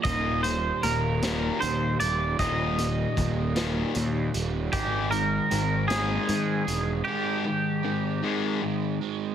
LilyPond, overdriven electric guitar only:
\new Staff \with { instrumentName = "Overdriven electric guitar" } { \clef bass \time 6/8 \key ees \major \tempo 4. = 51 ees,8 g8 bes8 g8 ees8 g8 | ees,8 g8 bes8 g8 ees8 g8 | aes,8 aes8 c'8 aes8 ees8 aes8 | aes,8 aes8 c'8 aes8 ees8 aes8 | }